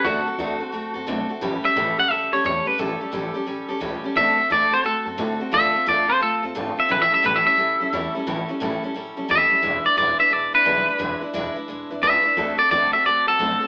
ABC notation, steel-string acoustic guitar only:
X:1
M:4/4
L:1/8
Q:"Swing" 1/4=175
K:Amix
V:1 name="Steel-string acoustic guitar"
[D,A,=CFA] [CFA] [D,A,CFA] [CFA] [A,CFA] [CFA] [D,A,CFA] [CFA] | [A,,E,G,CGA] [G,CGA] [A,,E,G,CGA] [G,CGA] [G,CGA] [G,CGA] [A,,E,G,CGA] [G,CGA] | [A,,E,G,CGA] [G,CGA] [A,,E,G,CGA] [G,CGA] [G,CGA] [G,CGA] [A,,E,G,CGA] [G,CGA] | [D,A,=CFA] [CFA] [D,A,CFA] [CFA] [A,CFA] [CFA] [D,A,CFA] [CFA] |
[D,A,=C=FA] [CFA] [D,A,CFA] [CFA] [A,CFA] [CFA] [D,A,CFA] [CFA] | [A,,E,G,CEA] [G,CEA] [A,,E,G,CEA] [G,CEA] [G,CEA] [G,CEA] [A,,E,G,CEA] [G,CEA] | [A,,E,G,CEA] [G,CEA] [A,,E,G,CEA] [G,CEA] [G,CEA] [G,CEA] [A,,E,G,CEA] [G,CEA] | [E,^G,DEB] [DEB] [E,G,DEB] [DEB] [G,DEB] [DEB] [E,G,DEB] [DE] |
[E,^G,DEB] [DEB] [E,G,DEB] [DEB] [G,DEB] [DEB] [E,G,DEB] [DEB] | [D,A,=CFA] [CFA] [D,A,CFA] [CFA] [A,CFA] [CFA] [D,A,CFA] [CFA] |]